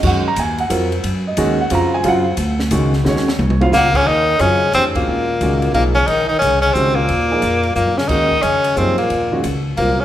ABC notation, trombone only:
X:1
M:3/4
L:1/8
Q:"Swing" 1/4=179
K:Ebdor
V:1 name="Trombone" clef=bass
z6 | z6 | z6 | z4 B,, D, |
E,2 D,2 C, B,,- | B,,4 B,, D, | E, E, D, D, C, B,,- | B,,4 B,, D, |
E,2 D,2 C, B,,- | B,,2 z2 B,, D, |]